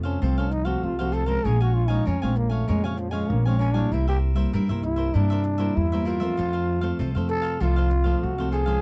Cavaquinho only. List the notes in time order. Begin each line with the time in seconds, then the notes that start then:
0.03 A4 C5 F5
0.22 F4 A4 C5 F5
0.38 A4 C5 F5
0.51 muted cavaquinho stroke
0.65 A4 C5 F5
0.99 A4 C5 F5
1.12 F4 A4 C5 F5
1.26 A4 C5 F5
1.44 A#4 C#5 F5 G#5
1.60 C#5 F5 G#5
1.88 C#5 F5 G#5
2.06 A#4 C#5 F5 G#5
2.22 C#5 F5 G#5
2.36 muted cavaquinho stroke
2.50 C#5 F5 G#5
2.68 A#4 C#5 F5 G#5
2.84 C#5 F5 G#5
2.97 muted cavaquinho stroke
3.11 C#5 F5 G#5
3.45 C#5 F5 G#5
3.59 A#4 C#5 F5 G#5
3.74 C#5 F5 G#5
3.91 E4 A#4 C5 E5
4.07 A#4 C5 E5
4.36 A#4 C5 E5
4.53 E4 A#4 C5 E5
4.69 A#4 C5 E5
4.83 muted cavaquinho stroke
4.96 A#4 C5 E5
5.14 E4 A#4 C5 E5
5.30 A#4 C5 E5
5.44 muted cavaquinho stroke
5.58 A#4 C5 E5
5.92 A#4 C5 E5
6.05 E4 A#4 C5 E5
6.20 A#4 C5 E5
6.37 F4 A4 C5 F5
6.53 A4 C5 F5
6.81 A4 C5 F5
6.99 F4 A4 C5 F5
7.15 A4 C5 F5
7.29 muted cavaquinho stroke
7.42 A4 C5 F5
7.60 F4 A4 C5 F5
7.76 A4 C5 F5
7.90 muted cavaquinho stroke
8.04 A4 C5 F5
8.38 A4 C5 F5
8.52 F4 A4 C5 F5
8.66 A4 C5 F5